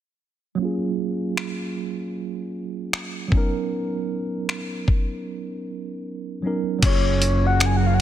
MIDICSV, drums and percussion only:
0, 0, Header, 1, 2, 480
1, 0, Start_track
1, 0, Key_signature, 6, "major"
1, 0, Tempo, 779221
1, 365, Time_signature, 4, 2, 24, 8
1, 4935, End_track
2, 0, Start_track
2, 0, Title_t, "Drums"
2, 847, Note_on_c, 9, 26, 100
2, 908, Note_off_c, 9, 26, 0
2, 1807, Note_on_c, 9, 26, 108
2, 1869, Note_off_c, 9, 26, 0
2, 2044, Note_on_c, 9, 36, 101
2, 2106, Note_off_c, 9, 36, 0
2, 2766, Note_on_c, 9, 26, 98
2, 2828, Note_off_c, 9, 26, 0
2, 3005, Note_on_c, 9, 36, 91
2, 3066, Note_off_c, 9, 36, 0
2, 4204, Note_on_c, 9, 42, 60
2, 4205, Note_on_c, 9, 36, 107
2, 4205, Note_on_c, 9, 49, 86
2, 4266, Note_off_c, 9, 42, 0
2, 4267, Note_off_c, 9, 36, 0
2, 4267, Note_off_c, 9, 49, 0
2, 4445, Note_on_c, 9, 42, 70
2, 4507, Note_off_c, 9, 42, 0
2, 4684, Note_on_c, 9, 42, 58
2, 4688, Note_on_c, 9, 26, 106
2, 4745, Note_off_c, 9, 42, 0
2, 4749, Note_off_c, 9, 26, 0
2, 4935, End_track
0, 0, End_of_file